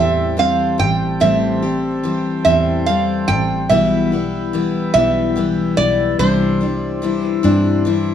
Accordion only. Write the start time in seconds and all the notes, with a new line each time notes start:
Already playing: A3 A4 C5 G5
3.70 B3 B4 E5
6.19 C4 C5 D5